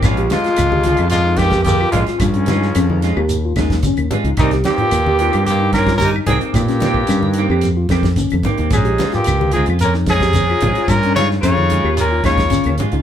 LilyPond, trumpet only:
\new Staff \with { instrumentName = "Trumpet" } { \time 4/4 \key bes \dorian \tempo 4 = 110 des'8 f'4. f'8 g'8 g'8 f'8 | des'2 r2 | ees'8 g'4. g'8 bes'8 bes'8 aes'8 | g'2 r2 |
aes'8. g'8. aes'8 bes'8 aes'4. | bes'8 des''8 des''4 bes'8 des''4 r8 | }